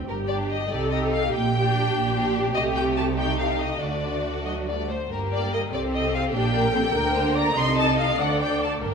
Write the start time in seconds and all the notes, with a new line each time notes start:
0.08 G1 G2 G4 A#4
0.29 D4 G4 D5
0.50 D#5
0.71 C2 C3 D#4 G4 A4 D5
0.92 D#4 G4 D#5
1.13 F5
1.33 A#1 A#2 G4 G5
1.54 D4 G4
1.95 A#1 A#2
2.14 D4 G4
2.55 C2 C3 A3 G4 D#5
2.77 G5
2.97 A5
3.18 A3 D#4 G4 G5
3.39 F5
3.60 D#5
3.80 D2 D3 A3 D4 F#4 D5
4.45 F#3 D#5
4.67 G3 D5
4.89 A3 C5
5.10 G1 G2 A#3 G4 A#4
5.33 D5
5.53 D#5
5.73 C2 C3 C4 G4 A4 D5
5.93 D#5
6.14 F5
6.35 A#1 A#2 D4 G4 G5
6.54 D4 A#4
6.75 C4 A4
6.95 D2 D3 A#3 A#4
7.16 C5
7.36 D5 A#5
7.56 C2 C3 D#4 A4 D#5 C6
7.77 A5
7.98 F5
8.19 D2 D3 D4 A4 D5 F#5
8.41 G5
8.63 A5
8.84 G1 G2 D4 A#4 G5